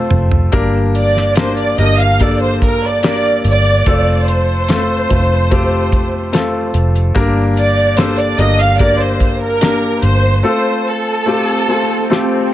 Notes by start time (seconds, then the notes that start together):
Already playing: A3 C4 F4 G4 A4 C5
0.11 F1, mid tom
0.31 floor tom
0.52 G1 G2 A#3 D4 G4 A#4, kick, closed hi-hat
0.95 D5, closed hi-hat
1.17 snare
1.35 A#3 D4 G4 A#4 C5, snare, closed hi-hat
1.57 D5, closed hi-hat
1.78 G1 A#3 D4 G4 A#4 D#5, closed hi-hat
1.99 F5
2.20 A#3 D4 G4 A4 D5, kick, closed hi-hat
2.41 C5
2.62 A#4, kick, closed hi-hat
2.84 D5
3.03 A#3 D4 G4 A#4 D5, snare, closed hi-hat
3.44 G1 D5, closed hi-hat
3.86 F1 A3 C4 F4 A4, kick, closed hi-hat
4.28 C5, closed hi-hat
4.68 A3 C4 F4 A4, snare, closed hi-hat
5.09 F1 A3 C4 F4 C5, kick, closed hi-hat
5.50 A3 C4 F4 G4, kick, closed hi-hat
5.92 kick, closed hi-hat
6.32 A3 C4 F4 A4, snare, closed hi-hat
6.74 F1, closed hi-hat
6.95 closed hi-hat
7.15 G1 G2 A#3 D4 G4 A#4, kick, closed hi-hat
7.57 D5, closed hi-hat
7.97 A#3 D4 G4 A4 C5, snare, closed hi-hat
8.18 D5, closed hi-hat
8.38 G1 A#3 D4 G4 A#4 D#5, closed hi-hat
8.60 F5
8.79 A#3 D4 G4 A#4 D5, kick, closed hi-hat
9.00 C5
9.20 kick, closed hi-hat
9.42 A#4
9.61 A#3 D4 G4 A#4, snare, closed hi-hat
10.02 G1 C5, closed hi-hat
10.43 A3 C4 F4 A4 C5, swell
10.87 A4
11.26 A3 C4 F4 G4
11.68 A3 C4 F4 A4
12.10 A3 C4 F4 G4, snare